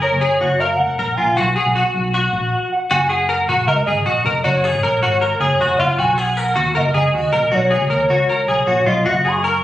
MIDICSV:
0, 0, Header, 1, 4, 480
1, 0, Start_track
1, 0, Key_signature, 6, "major"
1, 0, Tempo, 384369
1, 1708, Time_signature, 4, 2, 24, 8
1, 12035, End_track
2, 0, Start_track
2, 0, Title_t, "Soft synth lead"
2, 0, Program_c, 0, 80
2, 36, Note_on_c, 0, 73, 92
2, 735, Note_on_c, 0, 77, 101
2, 754, Note_off_c, 0, 73, 0
2, 949, Note_off_c, 0, 77, 0
2, 956, Note_on_c, 0, 78, 110
2, 1432, Note_on_c, 0, 80, 103
2, 1450, Note_off_c, 0, 78, 0
2, 1678, Note_on_c, 0, 78, 111
2, 1697, Note_off_c, 0, 80, 0
2, 3132, Note_off_c, 0, 78, 0
2, 3395, Note_on_c, 0, 78, 81
2, 3625, Note_on_c, 0, 80, 87
2, 3643, Note_off_c, 0, 78, 0
2, 3860, Note_on_c, 0, 78, 101
2, 3879, Note_off_c, 0, 80, 0
2, 4582, Note_on_c, 0, 75, 99
2, 4601, Note_off_c, 0, 78, 0
2, 4814, Note_off_c, 0, 75, 0
2, 4822, Note_on_c, 0, 75, 105
2, 5532, Note_on_c, 0, 73, 96
2, 5551, Note_off_c, 0, 75, 0
2, 7220, Note_on_c, 0, 78, 92
2, 7239, Note_off_c, 0, 73, 0
2, 7468, Note_on_c, 0, 80, 106
2, 7487, Note_off_c, 0, 78, 0
2, 7727, Note_on_c, 0, 78, 104
2, 7746, Note_off_c, 0, 80, 0
2, 8441, Note_on_c, 0, 75, 101
2, 8460, Note_off_c, 0, 78, 0
2, 8675, Note_off_c, 0, 75, 0
2, 8696, Note_on_c, 0, 75, 101
2, 9415, Note_on_c, 0, 73, 110
2, 9433, Note_off_c, 0, 75, 0
2, 11084, Note_off_c, 0, 73, 0
2, 11090, Note_on_c, 0, 75, 100
2, 11347, Note_on_c, 0, 78, 101
2, 11366, Note_off_c, 0, 75, 0
2, 11578, Note_on_c, 0, 85, 112
2, 11597, Note_off_c, 0, 78, 0
2, 12035, Note_off_c, 0, 85, 0
2, 12035, End_track
3, 0, Start_track
3, 0, Title_t, "Clean electric guitar"
3, 0, Program_c, 1, 27
3, 23, Note_on_c, 1, 70, 77
3, 259, Note_off_c, 1, 70, 0
3, 264, Note_on_c, 1, 68, 84
3, 506, Note_off_c, 1, 68, 0
3, 510, Note_on_c, 1, 66, 76
3, 749, Note_off_c, 1, 66, 0
3, 754, Note_on_c, 1, 70, 79
3, 1203, Note_off_c, 1, 70, 0
3, 1237, Note_on_c, 1, 70, 83
3, 1469, Note_on_c, 1, 65, 77
3, 1472, Note_off_c, 1, 70, 0
3, 1709, Note_off_c, 1, 65, 0
3, 1710, Note_on_c, 1, 66, 109
3, 1939, Note_off_c, 1, 66, 0
3, 1944, Note_on_c, 1, 68, 75
3, 2186, Note_off_c, 1, 68, 0
3, 2191, Note_on_c, 1, 66, 75
3, 2640, Note_off_c, 1, 66, 0
3, 2675, Note_on_c, 1, 66, 79
3, 3348, Note_off_c, 1, 66, 0
3, 3631, Note_on_c, 1, 66, 90
3, 3856, Note_off_c, 1, 66, 0
3, 3861, Note_on_c, 1, 68, 76
3, 4103, Note_off_c, 1, 68, 0
3, 4108, Note_on_c, 1, 70, 76
3, 4347, Note_off_c, 1, 70, 0
3, 4357, Note_on_c, 1, 66, 83
3, 4589, Note_off_c, 1, 66, 0
3, 4594, Note_on_c, 1, 70, 86
3, 4830, Note_off_c, 1, 70, 0
3, 4835, Note_on_c, 1, 68, 80
3, 5063, Note_off_c, 1, 68, 0
3, 5068, Note_on_c, 1, 66, 80
3, 5307, Note_off_c, 1, 66, 0
3, 5315, Note_on_c, 1, 70, 82
3, 5542, Note_off_c, 1, 70, 0
3, 5547, Note_on_c, 1, 66, 96
3, 5794, Note_off_c, 1, 66, 0
3, 5794, Note_on_c, 1, 68, 80
3, 6030, Note_off_c, 1, 68, 0
3, 6035, Note_on_c, 1, 70, 75
3, 6271, Note_off_c, 1, 70, 0
3, 6277, Note_on_c, 1, 66, 85
3, 6506, Note_off_c, 1, 66, 0
3, 6511, Note_on_c, 1, 70, 76
3, 6747, Note_off_c, 1, 70, 0
3, 6752, Note_on_c, 1, 68, 78
3, 6990, Note_off_c, 1, 68, 0
3, 7003, Note_on_c, 1, 66, 79
3, 7232, Note_off_c, 1, 66, 0
3, 7237, Note_on_c, 1, 65, 89
3, 7469, Note_off_c, 1, 65, 0
3, 7474, Note_on_c, 1, 66, 94
3, 7714, Note_off_c, 1, 66, 0
3, 7714, Note_on_c, 1, 68, 78
3, 7954, Note_off_c, 1, 68, 0
3, 7954, Note_on_c, 1, 70, 79
3, 8182, Note_off_c, 1, 70, 0
3, 8187, Note_on_c, 1, 66, 82
3, 8424, Note_off_c, 1, 66, 0
3, 8429, Note_on_c, 1, 70, 86
3, 8666, Note_off_c, 1, 70, 0
3, 8671, Note_on_c, 1, 68, 87
3, 8914, Note_off_c, 1, 68, 0
3, 8914, Note_on_c, 1, 66, 85
3, 9143, Note_off_c, 1, 66, 0
3, 9148, Note_on_c, 1, 70, 78
3, 9386, Note_on_c, 1, 66, 96
3, 9389, Note_off_c, 1, 70, 0
3, 9623, Note_on_c, 1, 68, 77
3, 9628, Note_off_c, 1, 66, 0
3, 9860, Note_off_c, 1, 68, 0
3, 9865, Note_on_c, 1, 70, 75
3, 10108, Note_off_c, 1, 70, 0
3, 10115, Note_on_c, 1, 66, 80
3, 10353, Note_off_c, 1, 66, 0
3, 10357, Note_on_c, 1, 70, 80
3, 10589, Note_off_c, 1, 70, 0
3, 10594, Note_on_c, 1, 68, 72
3, 10830, Note_on_c, 1, 66, 73
3, 10832, Note_off_c, 1, 68, 0
3, 11063, Note_off_c, 1, 66, 0
3, 11068, Note_on_c, 1, 65, 82
3, 11304, Note_off_c, 1, 65, 0
3, 11309, Note_on_c, 1, 66, 104
3, 11548, Note_on_c, 1, 68, 75
3, 11550, Note_off_c, 1, 66, 0
3, 11784, Note_off_c, 1, 68, 0
3, 11789, Note_on_c, 1, 70, 83
3, 12030, Note_off_c, 1, 70, 0
3, 12035, End_track
4, 0, Start_track
4, 0, Title_t, "Fingered electric bass"
4, 0, Program_c, 2, 33
4, 149, Note_on_c, 2, 30, 98
4, 353, Note_off_c, 2, 30, 0
4, 510, Note_on_c, 2, 30, 93
4, 917, Note_off_c, 2, 30, 0
4, 993, Note_on_c, 2, 29, 86
4, 1195, Note_off_c, 2, 29, 0
4, 1234, Note_on_c, 2, 34, 91
4, 1436, Note_off_c, 2, 34, 0
4, 1476, Note_on_c, 2, 34, 98
4, 1677, Note_off_c, 2, 34, 0
4, 1719, Note_on_c, 2, 35, 101
4, 1918, Note_off_c, 2, 35, 0
4, 2074, Note_on_c, 2, 35, 101
4, 2275, Note_off_c, 2, 35, 0
4, 2426, Note_on_c, 2, 35, 100
4, 2834, Note_off_c, 2, 35, 0
4, 2908, Note_on_c, 2, 34, 95
4, 3111, Note_off_c, 2, 34, 0
4, 3632, Note_on_c, 2, 30, 99
4, 4313, Note_off_c, 2, 30, 0
4, 4343, Note_on_c, 2, 34, 80
4, 4548, Note_off_c, 2, 34, 0
4, 4579, Note_on_c, 2, 37, 88
4, 4818, Note_on_c, 2, 32, 86
4, 4837, Note_off_c, 2, 37, 0
4, 5025, Note_off_c, 2, 32, 0
4, 5059, Note_on_c, 2, 34, 83
4, 5266, Note_off_c, 2, 34, 0
4, 5298, Note_on_c, 2, 29, 100
4, 5506, Note_off_c, 2, 29, 0
4, 5542, Note_on_c, 2, 30, 99
4, 5850, Note_off_c, 2, 30, 0
4, 5906, Note_on_c, 2, 32, 82
4, 6008, Note_off_c, 2, 32, 0
4, 6033, Note_on_c, 2, 34, 90
4, 6234, Note_off_c, 2, 34, 0
4, 6259, Note_on_c, 2, 32, 87
4, 6670, Note_off_c, 2, 32, 0
4, 6740, Note_on_c, 2, 30, 92
4, 6947, Note_off_c, 2, 30, 0
4, 6984, Note_on_c, 2, 29, 90
4, 7189, Note_off_c, 2, 29, 0
4, 7232, Note_on_c, 2, 30, 105
4, 7434, Note_off_c, 2, 30, 0
4, 7474, Note_on_c, 2, 35, 100
4, 8156, Note_off_c, 2, 35, 0
4, 8198, Note_on_c, 2, 39, 98
4, 8398, Note_off_c, 2, 39, 0
4, 8443, Note_on_c, 2, 30, 99
4, 8641, Note_off_c, 2, 30, 0
4, 8674, Note_on_c, 2, 37, 94
4, 8876, Note_off_c, 2, 37, 0
4, 8923, Note_on_c, 2, 39, 83
4, 9166, Note_off_c, 2, 39, 0
4, 9166, Note_on_c, 2, 34, 96
4, 9363, Note_off_c, 2, 34, 0
4, 9397, Note_on_c, 2, 35, 100
4, 9700, Note_off_c, 2, 35, 0
4, 9752, Note_on_c, 2, 37, 88
4, 9853, Note_off_c, 2, 37, 0
4, 9866, Note_on_c, 2, 39, 102
4, 10072, Note_off_c, 2, 39, 0
4, 10109, Note_on_c, 2, 37, 79
4, 10590, Note_off_c, 2, 37, 0
4, 10590, Note_on_c, 2, 35, 81
4, 10795, Note_off_c, 2, 35, 0
4, 10825, Note_on_c, 2, 34, 82
4, 11032, Note_off_c, 2, 34, 0
4, 11073, Note_on_c, 2, 35, 103
4, 11304, Note_on_c, 2, 30, 102
4, 11323, Note_off_c, 2, 35, 0
4, 11992, Note_off_c, 2, 30, 0
4, 12035, End_track
0, 0, End_of_file